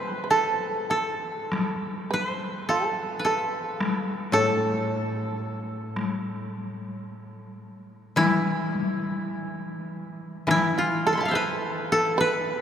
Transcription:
Already playing: B4
0.24 B4
0.30 A4
0.90 A4
1.52 taiko rim, taiko high
2.11 B4
2.24 C5
2.69 A4
3.19 B4
3.25 A4
3.80 taiko rim, taiko high
4.32 A2 A4
5.96 taiko rim, taiko high
8.16 E3 E4, taiko rim, taiko high
8.75 taiko high
10.47 E3 E4, taiko rim, taiko high
10.78 F4
11.06 A4
11.13 C6
11.17 A5 B5
11.23 E5 F5
11.28 C5 E5
11.33 B4
11.92 A4
12.18 B4

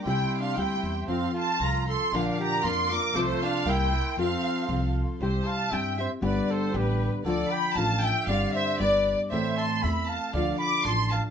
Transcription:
0.05 C2 C3 G3 C4 E4 G4 G5 C6
0.09 E5
0.40 D4 F5
0.57 D2 G3 C4 E4 G4 G5
0.83 E2
1.07 F2 F3 C4 F4 A4 F5 C6
1.33 F4 A5
1.60 C2 F3 C4 F4 A4 A#5
1.88 A4 C6
2.11 A#1 A#2 D3 F3 A#3 D4 A#4 F5 D6
2.40 G4 A#5
2.63 F2 F3 A#3 D4 F4 A#4 C6
2.90 F3 A#3 D4 A#4 D6
3.14 C2 C3 F3 A3 C4 F4 A4 C5 C6
3.43 D4 F5
3.65 C2 G3 A#3 E4 A#4 E5 G5 C6
3.70 E4
3.92 A#3 E4
4.17 F2 F3 C4 F4 A4 F5
4.68 C2 F3 C4 F4 A4
5.20 C2 C3 G3 C4 E4 G4 C5
5.46 F5 A5
5.71 G2 G3 C4 E4 G4 E5 G5
5.98 C4 E4 G4 C5 E5
6.21 G1 G2 D3 G3 B3 D4 G4 D5
6.26 B4
6.50 A4 C5
6.72 A1 G3 B3 D4 G4 B4
6.77 G4
7.25 D2 D3 F3 D4 F4 A4 D5
7.50 G5 B5
7.74 A1 F3 D4 F4 F5 A5
7.79 A4
8.02 E5 G5
8.26 G1 G2 D3 G3 C4 D4 G4 D5 F5
8.54 C5 E5
8.80 G1 G3 B3 D4 G4 B4 D5
9.30 A1 A2 E3 A3 C4 E4 A4 C5 E5
9.57 A5 C6
9.83 E2 A3 C4 E4 A4 E5 B5
10.07 F5 A5
10.33 D2 D3 F3 D4 F4 A4 D5 F5
10.58 B5 D6
10.85 A1 F3 D4 F4 A4 A5 C6
11.10 F5 A5

